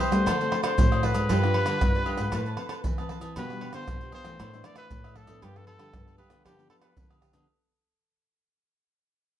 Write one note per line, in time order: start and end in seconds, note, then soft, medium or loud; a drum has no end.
0.00 0.25 G2 medium
0.00 0.25 E4 medium
0.00 0.25 B4 medium
0.00 0.25 C5 medium
0.00 0.63 C5 loud
0.00 0.26 G5 medium
0.00 pandeiro medium
0.00 high agogo medium
0.11 0.24 G3 medium
0.11 0.35 A3 medium
0.11 0.35 C4 medium
0.11 0.35 F#4 medium
0.11 pandeiro medium
0.11 tamborim medium
0.11 shaker medium
0.26 0.49 D3 loud
0.26 0.76 D3 medium
0.26 0.39 D4 medium
0.26 0.39 C5 medium
0.26 0.39 D5 medium
0.26 0.39 F#5 medium
0.26 pandeiro medium
0.26 tamborim medium
0.26 low agogo medium
0.26 shaker medium
0.26 surdo medium
0.40 0.75 A3 medium
0.40 0.75 C4 medium
0.40 0.75 F#4 medium
0.40 0.50 C5 soft
0.40 0.51 D5 soft
0.40 0.51 F#5 medium
0.40 pandeiro soft
0.40 shaker soft
0.51 0.62 D4 medium
0.51 0.62 C5 medium
0.51 0.62 D5 medium
0.51 0.62 F#5 medium
0.51 pandeiro medium
0.51 tamborim medium
0.51 low agogo medium
0.63 0.73 D4 medium
0.63 0.73 C5 medium
0.63 1.06 C5 medium
0.63 0.74 D5 medium
0.63 0.74 F#5 medium
0.63 pandeiro medium
0.63 tamborim medium
0.63 low agogo medium
0.63 shaker medium
0.78 1.11 A2 medium
0.78 1.28 A2 medium
0.78 1.13 A3 medium
0.78 1.14 C4 medium
0.78 1.14 F#4 medium
0.78 pandeiro medium
0.78 shaker medium
0.78 surdo loud
0.91 1.02 C5 soft
0.91 1.03 D5 soft
0.91 1.03 F#5 soft
0.91 pandeiro soft
0.91 tamborim medium
0.91 high agogo medium
0.91 shaker soft
1.03 1.16 D4 medium
1.03 3.11 B4 loud
1.03 1.15 C5 medium
1.03 1.14 D5 medium
1.03 1.14 F#5 medium
1.03 pandeiro medium
1.03 tamborim medium
1.15 1.27 G#2 medium
1.15 1.38 D4 medium
1.15 1.38 F4 medium
1.15 1.38 C5 medium
1.15 1.29 C5 soft
1.15 1.28 D5 soft
1.15 1.28 F#5 soft
1.15 pandeiro medium
1.15 high agogo medium
1.15 shaker medium
1.29 1.63 G2 loud
1.29 1.79 G3 medium
1.29 1.53 F4 medium
1.29 1.54 G4 medium
1.29 1.54 C5 medium
1.29 1.55 D5 medium
1.29 pandeiro medium
1.29 low agogo medium
1.29 shaker medium
1.29 surdo medium
1.44 1.78 D4 medium
1.44 1.79 F4 medium
1.44 pandeiro soft
1.44 tamborim medium
1.44 shaker soft
1.54 1.65 F4 soft
1.54 1.65 G4 medium
1.54 1.66 C5 medium
1.54 1.66 D5 medium
1.54 pandeiro medium
1.54 low agogo medium
1.66 1.79 D3 medium
1.66 1.77 F4 medium
1.66 1.77 G4 medium
1.66 1.77 C5 medium
1.66 1.77 D5 medium
1.66 pandeiro medium
1.66 tamborim medium
1.66 low agogo medium
1.66 shaker medium
1.81 2.04 G2 loud
1.81 2.31 D3 medium
1.81 2.04 D4 medium
1.81 2.04 F4 medium
1.81 2.04 C5 medium
1.81 pandeiro medium
1.81 tamborim medium
1.81 shaker medium
1.81 surdo loud
1.95 2.05 G4 soft
1.95 2.05 C5 soft
1.95 2.05 D5 medium
1.95 pandeiro soft
1.95 shaker soft
2.05 2.22 D4 medium
2.05 2.31 F4 medium
2.05 2.22 F4 medium
2.05 2.31 G4 medium
2.05 2.32 C5 medium
2.05 2.22 C5 medium
2.05 2.32 D5 medium
2.05 pandeiro medium
2.05 high agogo medium
2.17 2.30 G#2 medium
2.17 pandeiro medium
2.17 tamborim medium
2.17 shaker medium
2.32 2.55 A2 loud
2.32 2.82 A3 medium
2.32 2.55 C4 medium
2.32 2.55 E4 medium
2.32 2.45 A4 medium
2.32 2.45 B4 medium
2.32 2.56 B4 medium
2.32 2.45 C5 medium
2.32 2.46 A5 medium
2.32 pandeiro medium
2.32 tamborim medium
2.32 low agogo medium
2.32 shaker medium
2.32 surdo medium
2.46 2.58 B4 soft
2.46 2.57 C5 soft
2.46 2.58 A5 soft
2.46 pandeiro soft
2.46 shaker soft
2.57 2.83 C4 medium
2.57 2.83 E4 medium
2.57 2.68 A4 soft
2.57 2.69 B4 medium
2.57 2.83 B4 medium
2.57 2.69 C5 medium
2.57 2.70 A5 medium
2.57 pandeiro medium
2.57 tamborim medium
2.57 low agogo medium
2.69 2.80 A4 medium
2.69 2.80 B4 medium
2.69 2.80 C5 medium
2.69 2.80 A5 medium
2.69 pandeiro medium
2.69 tamborim medium
2.69 low agogo medium
2.69 shaker medium
2.84 3.18 E3 medium
2.84 3.34 E3 medium
2.84 pandeiro medium
2.84 shaker medium
2.84 surdo loud
2.98 3.35 C4 medium
2.98 3.35 E4 medium
2.98 3.10 B4 soft
2.98 3.36 B4 medium
2.98 3.09 C5 soft
2.98 3.10 A5 medium
2.98 pandeiro soft
2.98 tamborim medium
2.98 high agogo medium
2.98 shaker soft
3.09 3.22 A4 medium
3.09 3.21 B4 medium
3.09 3.22 C5 medium
3.09 3.20 A5 medium
3.09 pandeiro medium
3.09 tamborim medium
3.21 3.34 E3 medium
3.21 3.35 B4 soft
3.21 3.35 C5 soft
3.21 3.34 A5 medium
3.21 pandeiro medium
3.21 high agogo medium
3.21 shaker medium
3.36 3.70 B2 loud
3.36 3.86 B2 medium
3.36 3.46 G3 medium
3.36 3.60 D4 medium
3.36 3.46 D4 medium
3.36 3.46 F4 medium
3.36 3.60 G4 medium
3.36 3.61 B4 medium
3.36 3.73 B4 loud
3.36 3.61 F5 medium
3.36 pandeiro medium
3.36 low agogo medium
3.36 shaker medium
3.36 surdo medium
3.50 3.85 G3 medium
3.50 3.85 D4 medium
3.50 3.85 F4 medium
3.50 pandeiro soft
3.50 tamborim medium
3.50 shaker soft
3.61 3.72 D4 medium
3.61 3.72 G4 medium
3.61 3.73 B4 medium
3.61 3.73 F5 medium
3.61 pandeiro medium
3.61 low agogo medium
3.73 3.85 D3 medium
3.73 3.83 D4 medium
3.73 3.83 G4 medium
3.73 3.83 B4 medium
3.73 4.11 C5 loud
3.73 3.84 F5 medium
3.73 pandeiro medium
3.73 tamborim medium
3.73 low agogo medium
3.73 shaker medium
3.88 4.10 B2 loud
3.88 4.37 B2 medium
3.88 4.12 G3 medium
3.88 4.13 D4 medium
3.88 4.13 F4 medium
3.88 pandeiro medium
3.88 tamborim medium
3.88 shaker medium
3.88 surdo loud
4.01 4.12 G4 soft
4.01 4.13 B4 medium
4.01 4.13 F5 medium
4.01 pandeiro soft
4.01 shaker soft
4.12 4.38 D4 medium
4.12 4.38 G4 medium
4.12 4.38 B4 medium
4.12 4.67 C5 loud
4.12 4.39 F5 medium
4.12 pandeiro medium
4.12 high agogo medium
4.25 4.37 E3 medium
4.25 4.48 E3 medium
4.25 4.48 A3 medium
4.25 4.48 D4 medium
4.25 pandeiro medium
4.25 tamborim medium
4.25 shaker medium
4.39 4.88 A2 medium
4.39 4.61 A2 loud
4.39 4.51 D4 medium
4.39 4.52 A4 medium
4.39 4.52 D5 medium
4.39 4.52 E5 medium
4.39 pandeiro medium
4.39 tamborim medium
4.39 low agogo medium
4.39 shaker medium
4.39 surdo medium
4.53 4.88 E3 medium
4.53 4.88 A3 medium
4.53 4.88 D4 medium
4.53 4.63 A4 soft
4.53 4.64 D5 soft
4.53 4.65 E5 soft
4.53 pandeiro soft
4.53 shaker soft
4.64 4.75 D4 medium
4.64 4.75 A4 medium
4.64 4.75 D5 medium
4.64 4.77 D5 loud
4.64 4.76 E5 medium
4.64 pandeiro medium
4.64 tamborim medium
4.64 low agogo medium
4.64 shaker medium
4.76 4.86 D4 medium
4.76 4.86 A4 medium
4.76 5.18 B4 loud
4.76 4.86 D5 medium
4.76 4.86 E5 medium
4.76 pandeiro medium
4.76 tamborim medium
4.76 low agogo medium
4.76 shaker medium
4.90 5.24 A2 loud
4.90 5.41 A2 medium
4.90 5.16 E3 medium
4.90 5.16 A3 medium
4.90 5.16 D4 medium
4.90 pandeiro medium
4.90 shaker medium
4.90 surdo loud
5.04 5.14 A4 soft
5.04 5.15 D5 soft
5.04 5.16 E5 medium
5.04 pandeiro soft
5.04 tamborim medium
5.04 high agogo medium
5.04 shaker soft
5.15 5.28 D4 medium
5.15 5.27 A4 medium
5.15 5.45 A4 medium
5.15 5.27 D5 medium
5.15 5.26 E5 medium
5.15 pandeiro medium
5.15 tamborim medium
5.27 5.39 A2 medium
5.27 5.50 F3 medium
5.27 5.51 B3 medium
5.27 5.51 D4 medium
5.27 5.41 A4 soft
5.27 5.41 D5 medium
5.27 5.40 E5 soft
5.27 pandeiro medium
5.27 high agogo medium
5.27 shaker medium
5.42 5.76 G2 loud
5.42 5.92 G2 medium
5.42 5.64 D4 medium
5.42 5.65 G4 medium
5.42 5.58 G4 loud
5.42 5.66 B4 medium
5.42 5.66 F5 medium
5.42 pandeiro medium
5.42 low agogo medium
5.42 shaker medium
5.42 surdo medium
5.56 5.91 F3 medium
5.56 5.91 B3 medium
5.56 5.91 D4 medium
5.56 5.67 A4 loud
5.56 pandeiro soft
5.56 tamborim medium
5.56 shaker soft
5.66 5.77 D4 medium
5.66 5.77 G4 medium
5.66 6.16 A4 loud
5.66 5.78 B4 medium
5.66 5.78 F5 medium
5.66 pandeiro medium
5.66 low agogo medium
5.78 5.91 D3 medium
5.78 5.89 D4 medium
5.78 5.89 G4 medium
5.78 5.89 B4 medium
5.78 5.89 F5 medium
5.78 pandeiro medium
5.78 tamborim medium
5.78 low agogo medium
5.78 shaker medium
5.93 6.16 G2 loud
5.93 6.44 D3 medium
5.93 6.19 F3 medium
5.93 6.19 B3 medium
5.93 6.19 D4 medium
5.93 pandeiro medium
5.93 tamborim medium
5.93 shaker medium
5.93 surdo loud
6.07 6.17 G4 soft
6.07 6.18 B4 medium
6.07 6.18 F5 medium
6.07 pandeiro soft
6.07 shaker soft
6.18 6.43 D4 medium
6.18 6.44 G4 medium
6.18 6.43 B4 medium
6.18 6.44 B4 medium
6.18 6.44 F5 medium
6.18 pandeiro medium
6.18 high agogo medium
6.30 6.42 D3 medium
6.30 6.53 F3 medium
6.30 6.54 B3 medium
6.30 6.54 D4 medium
6.30 pandeiro medium
6.30 tamborim medium
6.30 shaker medium
6.44 6.94 G2 medium
6.44 6.68 D3 loud
6.44 6.57 D4 medium
6.44 6.57 G4 medium
6.44 6.70 G4 medium
6.44 6.57 B4 medium
6.44 6.57 F5 medium
6.44 pandeiro medium
6.44 tamborim medium
6.44 low agogo medium
6.44 shaker medium
6.44 surdo medium
6.59 6.93 F3 medium
6.59 6.93 B3 medium
6.59 6.93 D4 medium
6.59 6.69 G4 soft
6.59 6.70 B4 soft
6.59 6.70 F5 medium
6.59 pandeiro soft
6.59 shaker soft
6.70 6.80 D4 medium
6.70 6.81 G4 medium
6.70 6.76 A4 medium
6.70 6.81 B4 medium
6.70 6.81 F5 medium
6.70 pandeiro medium
6.70 tamborim medium
6.70 low agogo medium
6.81 6.92 D4 medium
6.81 6.92 G4 medium
6.81 7.19 B4 medium
6.81 6.92 B4 medium
6.81 6.92 F5 medium
6.81 pandeiro medium
6.81 tamborim medium
6.81 low agogo medium
6.81 shaker medium
6.96 7.46 D3 medium
6.96 7.30 D3 loud
6.96 7.21 F3 medium
6.96 7.21 B3 medium
6.96 7.21 D4 medium
6.96 pandeiro medium
6.96 shaker medium
6.96 surdo loud
7.09 7.20 G4 soft
7.09 7.21 B4 soft
7.09 7.21 F5 medium
7.09 pandeiro soft
7.09 tamborim medium
7.09 high agogo medium
7.09 shaker soft
7.21 7.34 D4 medium
7.21 7.34 G4 medium
7.21 7.33 B4 medium
7.21 7.32 F5 medium
7.21 pandeiro medium
7.21 tamborim medium
7.21 shaker medium
7.33 7.45 D3 medium
7.33 7.45 F3 medium
7.33 7.45 B3 medium
7.33 7.46 D4 medium
7.33 7.47 G4 soft
7.33 7.47 B4 soft
7.33 7.46 F5 soft
7.33 pandeiro medium
7.33 high agogo medium
7.33 shaker medium